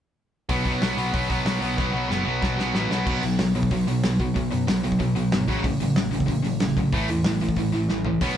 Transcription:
0.49 B1 B2 F#3 B3, kick, open hi-hat
0.65 B1 B2 F#3 B3, kick, open hi-hat
0.82 B1 B2 F#3 B3, snare, open hi-hat
0.97 B1 B2 F#3 B3, open hi-hat
1.13 B1 B2 F#3 B3, kick, open hi-hat
1.29 B1 B2 F#3 B3, kick, open hi-hat
1.45 B1 B2 F#3 B3, snare, open hi-hat
1.61 B1 B2 F#3 B3, open hi-hat
1.77 B1 B2 F#3 B3, kick, snare
1.92 B1 B2 F#3 B3
2.08 F#1 B2 F#3 B3, snare
2.24 B1 B2 F#3 B3
2.41 B2 F#3 B3, kick, snare
2.57 B1 B2 F#3 B3, snare
2.74 A1 B2 F#3 B3, snare
2.90 B1 B2 F#3 B3, snare
3.05 B1 B2 F#3 B3, kick, crash
3.22 B1 B2 F#3, open hi-hat
3.38 B1 B2 F#3, snare, open hi-hat
3.55 B1 B2 F#3, open hi-hat
3.63 kick
3.71 B1 B2 F#3, kick, open hi-hat
3.87 B1 B2 F#3, open hi-hat
4.03 B1 B2 F#3, snare, open hi-hat
4.20 B1 B2 F#3, kick, open hi-hat
4.34 B1 B2 F#3, kick, open hi-hat
4.51 F#2 B2 F#3, open hi-hat
4.67 B1 B2 F#3, snare, open hi-hat
4.83 B1 B2 F#3, open hi-hat
4.92 kick
4.99 B1 B2 F#3, kick, open hi-hat
5.15 B1 B2 F#3, open hi-hat
5.32 G1 B2 F#3, snare, open hi-hat
5.48 A1 F#2 C#3 F#3, kick, open hi-hat
5.64 A1 F#2 C#3, kick, open hi-hat
5.80 A1 F#2 C#3, open hi-hat
5.96 A1 F#2 C#3, snare, open hi-hat
6.11 A1 F#2 C#3, open hi-hat
6.20 kick
6.26 A1 F#2 C#3, kick, open hi-hat
6.43 A1 F#2 C#3, open hi-hat
6.60 A1 F#2 C#3, snare, open hi-hat
6.77 A1 F#2 C#3, kick, open hi-hat
6.92 A1 A2 E3 A3, kick, open hi-hat
7.08 E2 A2 E3, open hi-hat
7.24 A1 A2 E3, snare, open hi-hat
7.40 A1 A2 E3, open hi-hat
7.49 kick
7.56 A1 A2 E3, kick, open hi-hat
7.72 A1 A2 E3, open hi-hat
7.89 A1 A2 E3, snare
8.05 A1 A2 E3, floor tom
8.21 B1 B2 F#3 B3, kick, open hi-hat, crash

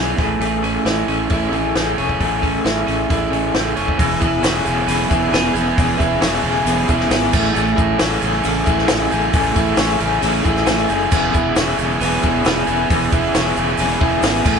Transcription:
Already playing: B1 E3 G#3 B3 C#4 E4 G#4
0.18 A1 E3 A3 C#4 G#4, kick, snare, open hi-hat
0.40 A1 E3 A3 C#4 G#4, open hi-hat
0.63 C#4, open hi-hat
0.85 A1 E3 A3 C#4 E4 G#4, snare, open hi-hat
1.07 A1 C#4, open hi-hat
1.30 A1 E3 A3 C#4 E4 G#4, kick, open hi-hat
1.52 A1 C#4 G#4, open hi-hat
1.57 A3
1.75 A1 A3 C#4 G#4, snare, open hi-hat
1.98 E1 A3 C#4 G#4 C#5, open hi-hat
2.09 kick
2.20 A1 E3 A3 C#4 G#4, kick, open hi-hat
2.42 C#4, kick, open hi-hat
2.64 A1 A3 E4 G#4, snare, open hi-hat
2.87 A1 C#4, open hi-hat
3.09 A1 E3 A3 C#4 E4 G#4, kick, open hi-hat
3.31 A1 A3 C#4 G#4, open hi-hat
3.54 A1 E3 A3 C#4 G#4, snare, open hi-hat
3.75 F#1 A3 C#4 G#4 C#5, open hi-hat
3.88 kick
3.97 E1 E3 B3 C#4 G#4, kick, open hi-hat, shaker
4.11 shaker
4.20 E1 B3 C#4 E4 G#4, kick, shaker
4.42 E1 E3 B3 C#4 G#4 C#5, snare, open hi-hat, shaker
4.65 E1 E3 B3 C#4 G#4, shaker
4.77 shaker
4.87 E1 E3 B3 C#4 G#4, open hi-hat, shaker
5.10 E1 E3 B3 C#4 E4 G#4, kick, shaker
5.32 E1 E3 B3 C#4 G#4, snare, open hi-hat, shaker
5.54 E1 B3 C#4 G#4, shaker
5.67 shaker
5.77 E1 E3 B3 C#4 G#4, kick, open hi-hat, shaker
5.98 E1 B3 C#4 E4 G#4, kick, shaker
6.21 E1 E3 B3 C#4 G#4 C#5, snare, open hi-hat, shaker
6.43 E1 E3 B3 C#4 G#4
6.56 shaker
6.66 E1 E3 B3 C#4 G#4, open hi-hat, shaker
6.88 E1 E3 B3 C#4 E4 G#4, kick, shaker
7.00 snare
7.10 G#1 E3 B3 C#4 G#4, snare, open hi-hat, shaker
7.33 A1 E3 A3 C#4 G#4, kick, crash, shaker
7.45 shaker
7.55 A1 E3 A3 C#4 G#4, shaker
7.67 shaker
7.76 A1 C#4 E4 G#4, kick, shaker
7.80 A3
7.99 A1 E3 A3 C#4 G#4 C#5, snare, open hi-hat, shaker
8.22 A1 E3 A3 C#4 G#4, shaker
8.34 shaker
8.44 A1 E3 A3 C#4 G#4, open hi-hat, shaker
8.66 A1 E3 A3 C#4 E4 G#4, kick, shaker
8.78 snare
8.88 A1 E3 A3 C#4 G#4, snare, open hi-hat, shaker
9.11 A1 A3 C#4 G#4, shaker
9.22 shaker
9.33 A1 E3 A3 C#4 G#4, kick, open hi-hat, shaker
9.45 shaker
9.55 A1 A3 C#4 E4 G#4, kick, shaker
9.77 A1 E3 A3 C#4 G#4 C#5, snare, open hi-hat, shaker
9.89 shaker
10.00 A1 E3 A3 C#4 G#4, shaker
10.12 shaker
10.22 A1 E3 A3 C#4 G#4, open hi-hat, shaker
10.35 shaker
10.43 A1 E3 A3 C#4 E4 G#4, kick, shaker
10.56 snare, shaker
10.67 A1 E3 A3 C#4 G#4, snare, open hi-hat, shaker
10.78 shaker
10.89 F#1 A3 C#4 G#4, shaker
11.00 shaker
11.11 E1 E3 B3 C#4 G#4, kick, crash, shaker
11.34 E1 B3 C#4 E4 G#4, kick, shaker
11.56 E1 E3 B3 C#4 G#4 C#5, snare, open hi-hat, shaker
11.78 E1 E3 B3 C#4 G#4, shaker
11.90 shaker
12.01 E1 E3 B3 C#4 G#4, open hi-hat, shaker
12.22 E1 E3 B3 C#4 E4 G#4, kick, shaker
12.45 E1 E3 B3 C#4 G#4, snare, open hi-hat, shaker
12.67 E1 B3 C#4 G#4, shaker
12.79 shaker
12.89 E1 E3 B3 C#4 G#4, kick, open hi-hat, shaker
13.01 shaker
13.12 E1 B3 C#4 E4 G#4, kick, shaker
13.34 E1 E3 B3 C#4 G#4 C#5, snare, open hi-hat, shaker
13.56 E1 E3 B3 C#4 G#4, shaker
13.67 shaker
13.77 E1 E3 B3 C#4 G#4, open hi-hat, shaker
14.00 E1 E3 B3 C#4 E4 G#4, kick
14.22 G#1 E3 B3 C#4 G#4, snare, open hi-hat, shaker
14.44 A1 E3 A3 C#4 G#4, kick, crash, shaker
14.55 shaker

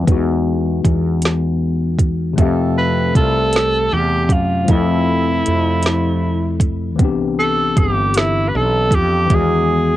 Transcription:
0.03 E3 F#3
0.07 E2 B3 D#4, kick, closed hi-hat
0.12 G#3 F#4
0.85 E2, kick, closed hi-hat
1.22 snare, closed hi-hat
1.99 kick, closed hi-hat
2.33 C3 A3
2.38 F2 E3 C4 A4 E5, kick, closed hi-hat
2.42 G4
2.78 B4
3.15 C2 C3 A3 F4 A4, kick, closed hi-hat
3.53 snare, closed hi-hat
3.93 E2 G4
4.24 G4
4.29 F#2 F4, kick, closed hi-hat
4.64 F3 A3, kick, closed hi-hat
4.69 F2 E3 C4 E4 A4
4.73 A4
5.46 F2 C3 F3 A3, closed hi-hat
5.83 snare, closed hi-hat
6.60 kick, closed hi-hat
6.96 C2 E3 B3, kick, closed hi-hat
7.00 C4 D4
7.05 G4
7.39 A4
7.77 G1 G4, kick, closed hi-hat
8.14 E4, snare, closed hi-hat
8.49 B4
8.55 B1 A4
8.91 F2, kick, closed hi-hat
8.95 G4
9.26 E3 G3, kick, closed hi-hat
9.30 E2 D#3 B3 G#4
9.35 G#3 F#4

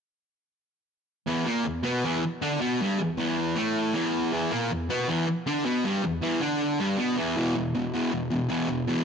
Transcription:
1.27 E2 E3
1.45 A#2 A#3
1.65 E2
1.83 B2 B3
2.04 E2 E3
2.24 muted distorted electric guitar stroke
2.42 D3 D4
2.60 B2 B3
2.81 G2 G3
2.99 E2
3.17 E2 E3
3.55 A2 A3
3.93 E2 E3
4.32 E2 E3
4.51 A#2 A#3
4.71 E2
4.90 B2 B3
5.08 E2 E3
5.28 muted distorted electric guitar stroke
5.46 D3 D4
5.64 B2 B3
5.84 G2 G3
6.03 E2
6.22 E2 E3
6.41 D3 D4
6.79 G2 G3
6.97 B2 B3
7.16 E2 E3
7.37 E2 B2 E3
7.55 E2 B2
7.75 E2 B2
7.94 E2 B2 E3
8.12 E2 B2
8.31 E2 B2
8.49 E2 B2 E3
8.68 E2 B2
8.88 E2 B2 E3

